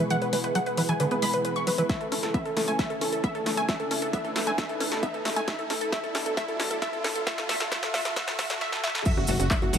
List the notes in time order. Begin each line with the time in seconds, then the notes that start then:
Already playing: B2 E3 G#3 E4 G#4, riser
0.10 E3 F#5, closed hi-hat
0.22 B4, closed hi-hat
0.33 G#3 B4, open hi-hat
0.44 B4, closed hi-hat
0.55 F#3 F#5, closed hi-hat
0.66 B4, closed hi-hat
0.77 E3 B4, open hi-hat
0.89 E3 G#5, closed hi-hat
1.00 D3 B4, closed hi-hat
1.11 B3 B4, closed hi-hat
1.22 G#3 B5, open hi-hat
1.33 B4, closed hi-hat
1.45 B4, closed hi-hat
1.56 C#6, closed hi-hat
1.67 F#3 B4, open hi-hat
1.78 E3 B4, closed hi-hat
1.89 C#3 A3 A4 E5, kick, snare, closed hi-hat
2.01 A4, closed hi-hat
2.12 C#4 A4, open hi-hat
2.23 A4, snare, closed hi-hat
2.34 B3 E5, kick, closed hi-hat
2.45 A4, closed hi-hat
2.57 A3 A4, snare, open hi-hat
2.68 A3 G#5, closed hi-hat
2.79 A3 E5, kick, snare, closed hi-hat
2.90 A4, closed hi-hat
3.01 C#4 A4, open hi-hat
3.13 A4, closed hi-hat
3.24 B3 E5, kick, closed hi-hat
3.35 A4, closed hi-hat
3.46 A3 A4, snare, open hi-hat
3.57 A3 G#5, closed hi-hat
3.68 A3 B4 E5, kick, snare, closed hi-hat
3.80 A4, closed hi-hat
3.91 C#4 A4, open hi-hat
4.02 A4, closed hi-hat
4.13 B3 E5, kick, closed hi-hat
4.25 A4, closed hi-hat
4.36 A3 A4, snare, open hi-hat
4.47 A3 G#5, closed hi-hat
4.58 A3 E5, kick, snare, closed hi-hat
4.69 A4, closed hi-hat
4.80 C#4 A4, open hi-hat
4.92 A4, snare, closed hi-hat
5.03 B3 E5, kick, closed hi-hat
5.14 A4, closed hi-hat
5.25 A3 A4, snare, open hi-hat
5.36 A3 G#5, closed hi-hat
5.48 B2 F#3 A3 D4 A4 E5, kick, snare, closed hi-hat
5.59 A4, closed hi-hat
5.70 C#4 A4, snare, open hi-hat
5.81 A4, closed hi-hat
5.92 A3 E5, kick, snare, closed hi-hat
6.04 A4, closed hi-hat
6.15 C#4 A4, snare, open hi-hat
6.26 A4, closed hi-hat
6.37 A3 E5, kick, snare, closed hi-hat
6.48 A4, closed hi-hat
6.60 C#4 A4, snare, open hi-hat
6.71 A4, closed hi-hat
6.82 A3 E5, kick, snare, closed hi-hat
6.93 A4, closed hi-hat
7.04 C#4 A4, snare, open hi-hat
7.15 A4, closed hi-hat
7.27 A3 E5, kick, snare, closed hi-hat
7.38 A4, snare, closed hi-hat
7.49 A3 E5, snare, open hi-hat
7.60 A4, snare, closed hi-hat
7.71 A3 E5, kick, snare, closed hi-hat
7.83 A4, snare, closed hi-hat
7.94 A3 E5, snare, open hi-hat
8.05 A4, snare, closed hi-hat
8.16 A3 E5, kick, snare, closed hi-hat
8.27 A4, snare, closed hi-hat
8.39 A3 E5, kick, snare, open hi-hat
8.50 A4, snare, closed hi-hat
8.61 E5, snare
8.72 A4, snare
8.84 E5, snare
8.95 A4, snare
9.05 C#3 F#3 A3 E4 F#4 E5, kick, closed hi-hat, crash, impact, cabasa
9.17 F#1 F#4, closed hi-hat
9.27 F#1 A3 F#4, open hi-hat, cabasa
9.39 F#1 F#4, closed hi-hat, cabasa
9.51 G#3 E5, kick, clap, closed hi-hat, cabasa
9.62 F#1 F#4, closed hi-hat
9.73 G#1 F#3 F#4, open hi-hat, cabasa